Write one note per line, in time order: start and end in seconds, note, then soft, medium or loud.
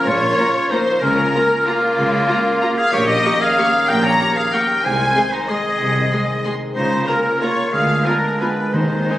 0.00 0.98 C#3 medium
0.00 0.21 F3 medium
0.00 0.86 A#3 medium
0.00 0.98 A#3 medium
0.00 0.37 C#4 medium
0.00 0.98 C#4 medium
0.00 0.98 F4 medium
0.00 0.54 A#4 medium
0.00 2.68 C#5 soft
0.06 0.32 A#1 medium
0.06 0.33 A#2 medium
0.06 1.04 A#2 medium
0.06 0.72 F4 medium
0.06 0.71 C#5 medium
0.06 0.72 C#5 medium
0.22 2.94 F3 medium
0.39 0.47 A#3 medium
0.39 0.47 F4 medium
0.39 0.47 A#5 medium
0.70 0.79 A#3 medium
0.70 1.50 C#4 medium
0.70 1.01 D#4 medium
0.70 0.79 F4 medium
0.70 1.01 C5 loud
0.70 1.02 C5 medium
0.70 0.79 A#5 medium
0.87 1.17 A#3 medium
1.01 1.28 C#2 medium
1.01 2.76 C#3 medium
1.01 1.28 C#3 medium
1.01 1.97 C#3 medium
1.01 2.76 A#3 medium
1.01 2.76 C#4 medium
1.01 1.68 C#4 medium
1.01 2.76 F4 medium
1.01 1.68 A#4 medium
1.01 1.67 A#4 loud
1.18 2.12 A#3 medium
1.34 1.43 A#3 medium
1.34 1.42 F4 medium
1.34 1.66 A#4 medium
1.34 1.43 A#5 medium
1.51 1.82 C#4 medium
1.66 2.79 A#3 medium
1.66 1.75 A#3 medium
1.66 2.77 F4 medium
1.66 2.77 F4 loud
1.66 1.75 F4 medium
1.66 1.75 A#5 medium
1.83 2.44 C#4 medium
1.97 2.23 C#2 medium
1.97 2.23 C#3 medium
1.97 2.94 C#3 medium
2.13 3.07 A#3 medium
2.29 2.37 A#3 medium
2.29 2.37 F4 medium
2.29 2.61 A#4 medium
2.29 2.37 A#5 medium
2.45 2.76 C#4 medium
2.62 2.70 A#3 medium
2.62 2.70 F4 medium
2.62 2.70 A#5 medium
2.77 3.72 C#4 medium
2.77 2.92 G#4 medium
2.77 2.92 F5 loud
2.77 2.92 F5 medium
2.92 3.19 A#1 medium
2.92 3.19 A#2 medium
2.92 3.88 A#2 medium
2.92 4.81 D#3 medium
2.92 4.81 A#3 medium
2.92 4.81 C#4 medium
2.92 3.07 G4 medium
2.92 4.81 G4 medium
2.92 3.08 C#5 loud
2.92 3.00 C#5 medium
3.07 4.02 A#3 medium
3.07 3.43 G4 medium
3.07 3.40 D#5 loud
3.07 3.42 D#5 medium
3.24 3.33 A#3 medium
3.24 3.56 D#4 medium
3.24 3.33 G4 medium
3.24 3.32 C#6 medium
3.41 4.36 G4 medium
3.41 3.89 G#4 medium
3.41 3.90 F5 medium
3.41 3.88 F5 loud
3.58 3.66 A#3 medium
3.58 3.66 G4 medium
3.58 3.66 C#6 medium
3.74 4.68 C#4 medium
3.88 4.15 A#1 medium
3.88 4.86 A#2 medium
3.88 4.15 A#2 medium
3.88 4.06 A#4 medium
3.88 4.03 G5 loud
3.88 4.05 G5 medium
4.03 4.85 A#3 medium
4.03 4.39 C#5 medium
4.03 4.36 A#5 loud
4.03 4.38 A#5 medium
4.20 4.28 A#3 medium
4.20 4.51 D#4 medium
4.20 4.28 G4 medium
4.20 4.29 C#6 medium
4.36 4.53 G#4 medium
4.36 4.52 F5 loud
4.36 4.55 F5 medium
4.53 4.61 A#3 medium
4.53 5.14 D#4 medium
4.53 4.61 G4 medium
4.53 4.86 A#4 medium
4.53 4.84 G5 medium
4.53 4.61 C#6 medium
4.69 4.86 C#4 medium
4.83 5.10 C2 medium
4.83 5.10 C3 medium
4.83 5.79 C3 medium
4.83 6.72 D#3 medium
4.83 6.72 G#3 medium
4.83 6.72 C4 medium
4.83 6.76 G#4 medium
4.83 5.34 C5 medium
4.83 5.32 G#5 loud
4.83 5.34 G#5 loud
5.00 5.94 G#3 medium
5.15 5.24 G#3 medium
5.15 5.23 G#4 medium
5.15 5.24 C6 medium
5.31 5.48 D#4 medium
5.31 5.48 C5 medium
5.31 5.50 C5 medium
5.48 5.57 G#3 medium
5.48 6.11 D#4 medium
5.48 5.57 G#4 medium
5.48 6.43 G#4 medium
5.48 6.42 D#5 medium
5.48 6.45 D#5 medium
5.48 5.56 C6 medium
5.65 6.60 C4 medium
5.80 6.06 C2 medium
5.80 6.06 C3 medium
5.80 6.77 C3 medium
5.96 6.77 G#3 medium
6.12 6.20 G#3 medium
6.12 6.44 D#4 medium
6.12 6.20 G#4 medium
6.12 6.20 C6 medium
6.29 6.77 G#4 medium
6.45 6.53 G#3 medium
6.45 6.77 D#4 medium
6.45 6.53 G#4 medium
6.45 6.53 C6 medium
6.61 6.77 C4 medium
6.75 7.02 C#2 medium
6.75 7.02 C#3 medium
6.75 7.74 C#3 medium
6.75 7.73 C#3 medium
6.75 7.71 A#3 medium
6.75 7.05 D#4 medium
6.75 8.70 F4 medium
6.75 7.05 C5 loud
6.75 7.09 C5 medium
7.07 7.15 A#3 medium
7.07 7.40 C#4 medium
7.07 7.16 F4 medium
7.07 7.40 A#4 medium
7.07 7.41 A#4 medium
7.07 7.15 A#5 medium
7.24 7.74 A#4 medium
7.41 7.49 A#3 medium
7.41 7.74 F4 medium
7.41 8.04 F4 soft
7.41 7.49 F4 medium
7.41 7.73 C#5 medium
7.41 7.49 A#5 medium
7.57 7.74 A#3 soft
7.72 8.00 D2 medium
7.72 8.75 D3 medium
7.72 8.00 D3 medium
7.72 8.72 D3 medium
7.72 9.19 G#3 medium
7.72 8.74 B3 medium
7.72 8.07 G#4 medium
7.72 8.04 F5 medium
7.72 8.08 F5 medium
7.89 9.19 G#3 soft
8.04 8.14 B3 medium
8.04 8.39 D4 medium
8.04 8.14 F4 medium
8.04 8.40 A#4 medium
8.04 8.13 G#5 soft
8.23 9.08 G#4 soft
8.39 8.49 B3 soft
8.39 8.75 D4 medium
8.39 8.48 F4 medium
8.39 8.74 B4 medium
8.39 8.76 B4 medium
8.39 8.48 G#5 soft
8.73 9.03 D#2 medium
8.73 9.19 D#3 medium
8.73 9.03 D#3 medium
8.73 9.19 D#3 medium
8.73 9.19 C4 soft
8.73 9.19 D#4 medium
8.73 9.19 C5 medium
8.91 9.19 C4 soft
9.09 9.17 C4 soft
9.09 9.17 D#4 soft
9.09 9.17 G#5 soft